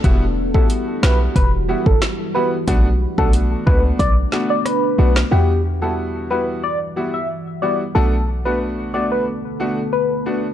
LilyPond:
<<
  \new Staff \with { instrumentName = "Soft synth lead" } { \time 4/4 \key e \dorian \tempo 4 = 91 r8. a'16 r8 b'16 r16 b'16 r8 a'16 r8 b'16 r16 | r8. a'16 r8 b'16 r16 d''16 r8 d''16 b'8. r16 | g'8 r16 a'16 r8 b'16 r16 d''16 r8 e''16 r8 d''16 r16 | a'8 r16 b'16 r8 d''16 b'16 r4 b'8. r16 | }
  \new Staff \with { instrumentName = "Grand piano" } { \time 4/4 \key e \dorian <g b e' fis'>16 r8 <g b e' fis'>8. <g b e' fis'>8 r8 <g b e' fis'>16 r8. <g b e' fis'>16 r16 | <a b d' fis'>16 r8 <a b d' fis'>8. <a b d' fis'>8 r8 <a b d' fis'>16 r8. <a b d' fis'>16 r16 | <g b e' fis'>16 r8 <g b e' fis'>8. <g b e' fis'>8 r8 <g b e' fis'>16 r8. <g b e' fis'>16 r16 | <a b d' fis'>16 r8 <a b d' fis'>8. <a b d' fis'>8 r8 <a b d' fis'>16 r8. <a b d' fis'>16 r16 | }
  \new Staff \with { instrumentName = "Ambient pad" } { \time 4/4 \key e \dorian <e g fis'>1 | <b d' a'>1 | <e g fis''>1 | <d b a'>1 | }
  \new Staff \with { instrumentName = "808-style bass" } { \clef bass \time 4/4 \key e \dorian e,,4 r8 b,,8 e,,8. g,,16 r4 | b,,8. b,,8. cis,8 b,,8 r4 b,,8 | e,1 | b,,1 | }
  \new DrumStaff \with { instrumentName = "Drums" } \drummode { \time 4/4 <hh bd>8. bd16 hh8 <ss sn>8 <hh bd>8. bd16 <hh ss sn>4 | <hh bd>8. bd16 hh8 bd8 <hh bd>8 sn8 <hh ss>8. <ss sn>16 | r4 r4 r4 r4 | r4 r4 r4 r4 | }
>>